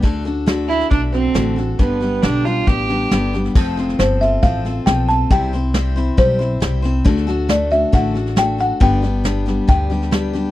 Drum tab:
CC |----------------|----------------|x---------------|----------------|
HH |----p-------p---|----p-------p---|----p-------p---|----p-------p---|
SD |o-o-o-ooo-o-o-o-|o-o-o-o-o-o-o-oo|o-ooo-o-o-o-o-o-|o-o-o-o-o-o-o-o-|
BD |o-------o-------|o-------o-------|o-------o-------|o-------o-------|

CC |----------------|----------------|
HH |----p-------p---|----p-------p---|
SD |ooo-o-o-o-ooo-o-|o-o-o-o-o-ooo-o-|
BD |o-------o-------|o-------o-------|